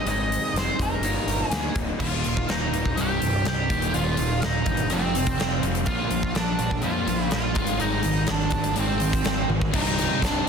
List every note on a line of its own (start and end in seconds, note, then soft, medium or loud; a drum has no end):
0.05 0.37 G#1 medium
0.05 0.79 G#2 medium
0.05 0.80 D#3 medium
0.05 0.55 G#3 medium
0.05 0.56 C4 medium
0.05 0.56 D#4 medium
0.05 0.52 D#5 loud
0.05 closed hi-hat medium
0.09 0.57 G#4 medium
0.32 closed hi-hat medium
0.54 0.70 F1 medium
0.54 0.80 G#3 medium
0.54 0.80 C4 medium
0.54 0.79 D#4 medium
0.54 snare loud
0.54 closed hi-hat medium
0.58 0.78 G#4 medium
0.58 0.82 C5 medium
0.79 0.95 F1 medium
0.79 1.03 G#3 medium
0.79 1.03 C4 medium
0.79 1.03 D#4 medium
0.79 1.02 G#4 medium
0.79 1.48 A#4 medium
0.79 kick medium
0.79 closed hi-hat medium
1.00 1.17 G1 medium
1.00 1.50 D#2 medium
1.00 1.51 A#2 medium
1.00 1.51 D#3 medium
1.00 1.52 G3 loud
1.00 1.52 A#3 medium
1.00 closed hi-hat medium
1.05 1.52 D#4 loud
1.27 1.42 G1 medium
1.27 closed hi-hat medium
1.48 1.67 D2 medium
1.48 1.74 G#4 medium
1.48 closed hi-hat loud
1.52 1.99 D#2 medium
1.52 1.99 A#2 medium
1.52 1.77 D#3 loud
1.52 1.77 G3 medium
1.52 1.76 A#3 medium
1.52 1.76 D#4 medium
1.52 snare loud
1.75 1.91 D1 medium
1.75 2.00 D#3 soft
1.75 2.00 G3 medium
1.75 2.00 A#3 medium
1.75 2.00 D#4 medium
1.75 kick medium
1.75 closed hi-hat medium
1.99 2.22 D#1 medium
1.99 2.23 D#2 medium
1.99 2.97 D#2 medium
1.99 2.23 A#2 medium
1.99 2.24 D#3 loud
1.99 2.46 F4 medium
1.99 2.50 F5 loud
1.99 kick loud
1.99 crash loud
2.24 2.47 D#1 medium
2.24 2.47 D#2 medium
2.24 2.47 A#2 medium
2.24 2.98 D#3 medium
2.24 closed hi-hat medium
2.37 kick medium
2.48 2.71 D#1 medium
2.48 2.71 D#2 medium
2.48 2.71 A#2 medium
2.48 2.98 A#3 medium
2.48 2.95 D#4 medium
2.48 2.99 D#5 medium
2.48 snare loud
2.48 closed hi-hat medium
2.72 2.95 D#1 medium
2.72 2.94 D#2 medium
2.72 2.95 A#2 medium
2.72 2.97 G3 medium
2.72 closed hi-hat medium
2.85 kick medium
2.96 3.19 C1 medium
2.96 3.18 C2 medium
2.96 3.70 C2 medium
2.96 3.19 G2 medium
2.96 3.20 C3 loud
2.96 closed hi-hat medium
3.01 3.44 G4 medium
3.01 3.44 G5 medium
3.19 3.44 C1 medium
3.19 3.42 C2 medium
3.19 3.43 G2 medium
3.19 3.71 G3 medium
3.19 closed hi-hat medium
3.44 3.67 C2 medium
3.44 3.68 C2 medium
3.44 3.67 G2 medium
3.44 3.71 D#4 medium
3.44 3.92 G4 medium
3.44 snare loud
3.44 closed hi-hat medium
3.48 3.97 G5 medium
3.68 3.92 D#1 medium
3.68 3.92 D#2 medium
3.68 3.95 D#2 medium
3.68 3.93 A#2 medium
3.68 3.93 D#3 medium
3.68 kick loud
3.68 closed hi-hat medium
3.82 closed hi-hat medium
3.94 4.17 D#1 loud
3.94 4.16 D#2 medium
3.94 4.92 D#2 medium
3.94 4.16 A#2 medium
3.94 4.18 D#3 loud
3.94 4.39 F4 medium
3.94 4.44 F5 loud
3.94 closed hi-hat medium
4.17 4.40 D#1 medium
4.17 4.40 D#2 medium
4.17 4.40 A#2 medium
4.17 4.92 D#3 medium
4.17 closed hi-hat medium
4.42 4.65 D#1 medium
4.42 4.64 D#2 medium
4.42 4.65 A#2 medium
4.42 4.92 A#3 medium
4.42 4.89 D#4 medium
4.42 4.94 D#5 medium
4.42 snare loud
4.42 closed hi-hat medium
4.66 4.90 G1 medium
4.66 4.88 D#2 medium
4.66 4.89 A#2 medium
4.66 4.92 G3 medium
4.66 kick medium
4.66 closed hi-hat medium
4.77 closed hi-hat medium
4.90 5.35 F1 medium
4.90 5.13 F2 loud
4.90 5.89 F2 medium
4.90 5.13 C3 medium
4.90 5.14 F3 loud
4.90 5.61 C4 medium
4.90 closed hi-hat medium
4.95 5.62 C5 medium
5.14 5.37 F2 medium
5.14 5.37 C3 medium
5.14 5.62 C4 medium
5.14 closed hi-hat medium
5.27 kick medium
5.27 closed hi-hat medium
5.37 5.60 F1 medium
5.37 5.60 F2 medium
5.37 5.61 C3 medium
5.37 5.88 F4 medium
5.37 snare loud
5.37 closed hi-hat medium
5.62 5.85 F1 medium
5.62 5.85 F2 medium
5.62 5.85 C3 medium
5.62 5.88 C4 medium
5.62 closed hi-hat medium
5.75 closed hi-hat medium
5.86 6.09 A#1 medium
5.86 6.10 A#2 medium
5.86 6.11 F3 loud
5.86 6.11 A#3 loud
5.86 6.33 F4 medium
5.86 6.36 F5 loud
5.86 kick loud
5.86 closed hi-hat medium
6.10 6.33 A#1 loud
6.10 6.34 A#2 medium
6.10 6.34 F3 medium
6.10 closed hi-hat medium
6.23 kick medium
6.35 6.57 A#1 medium
6.35 6.58 A#2 medium
6.35 6.58 F3 medium
6.35 6.81 D4 medium
6.35 6.82 D5 medium
6.35 snare loud
6.35 closed hi-hat medium
6.59 6.82 A#1 medium
6.59 6.81 A#2 medium
6.59 6.82 F3 medium
6.59 closed hi-hat medium
6.71 kick medium
6.82 7.05 F2 medium
6.82 7.05 A#2 medium
6.82 7.06 F3 medium
6.82 7.07 A#3 loud
6.82 7.29 F4 medium
6.82 7.32 F5 loud
6.82 closed hi-hat medium
7.06 7.29 A#1 medium
7.06 7.29 A#2 medium
7.06 7.30 F3 medium
7.06 closed hi-hat medium
7.30 7.54 A#1 medium
7.30 7.53 A#2 medium
7.30 7.54 F3 medium
7.30 7.78 F4 medium
7.30 7.80 F5 loud
7.30 snare loud
7.30 closed hi-hat medium
7.54 7.78 G#1 medium
7.54 7.77 G#2 medium
7.54 7.78 D#3 medium
7.54 7.79 G#3 loud
7.54 kick loud
7.54 closed hi-hat medium
7.67 closed hi-hat medium
7.78 8.03 G#1 medium
7.78 8.01 G#2 medium
7.78 8.01 D#3 medium
7.78 8.03 G#3 loud
7.78 8.26 D#4 medium
7.78 8.30 D#5 loud
7.78 closed hi-hat medium
8.02 8.27 G#1 medium
8.02 8.25 G#2 medium
8.02 8.26 D#3 medium
8.02 closed hi-hat medium
8.27 8.51 G#1 medium
8.27 8.50 G#2 medium
8.27 8.50 D#3 medium
8.27 8.75 D4 medium
8.27 snare loud
8.27 closed hi-hat medium
8.31 8.79 D5 medium
8.40 snare soft
8.50 8.74 G#1 medium
8.50 8.72 G#2 medium
8.50 8.73 D#3 medium
8.50 kick medium
8.50 closed hi-hat medium
8.64 closed hi-hat medium
8.74 9.22 G#1 medium
8.74 8.98 G#2 medium
8.74 8.99 D#3 loud
8.74 8.99 G#3 loud
8.74 closed hi-hat medium
8.79 9.47 C4 medium
8.79 9.47 C5 medium
9.00 9.23 G#2 medium
9.00 9.23 D#3 medium
9.00 closed hi-hat medium
9.13 kick medium
9.13 closed hi-hat medium
9.24 9.47 G#1 medium
9.24 9.47 G#2 medium
9.24 9.47 D#3 medium
9.24 snare loud
9.24 closed hi-hat medium
9.48 9.71 G#1 medium
9.48 9.71 G#2 medium
9.48 9.71 D#3 medium
9.48 high tom medium
9.61 kick medium
9.71 10.07 C1 medium
9.71 10.18 C2 medium
9.71 10.19 G2 loud
9.71 9.99 C3 medium
9.71 9.98 G3 loud
9.71 10.19 D#4 medium
9.71 9.96 D#4 loud
9.71 10.49 G4 medium
9.71 10.49 C5 medium
9.71 10.49 G5 medium
9.71 10.49 C6 medium
9.71 kick loud
9.71 crash loud
9.76 10.20 D#5 medium
9.86 closed hi-hat soft
9.97 10.21 C3 medium
9.97 10.22 G3 medium
9.97 10.22 D#4 medium
9.97 closed hi-hat medium
10.20 10.39 C1 medium
10.20 10.49 C2 medium
10.20 10.49 G2 medium
10.20 10.47 C3 loud
10.20 10.46 G3 medium
10.20 10.44 D#4 medium
10.20 kick medium
10.20 closed hi-hat loud
10.24 10.49 D4 medium
10.24 10.49 D5 medium
10.24 snare loud
10.45 10.49 D#4 medium